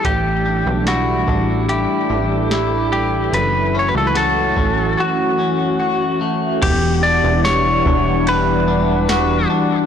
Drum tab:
CC |--------|--------|x-------|
RD |--------|--------|x-x-x-x-|
HH |x-x-x-x-|x-x-----|--------|
TB |--------|--------|--x---x-|
SD |--o---o-|--o-----|--o---o-|
BD |o--o----|---o----|o--o----|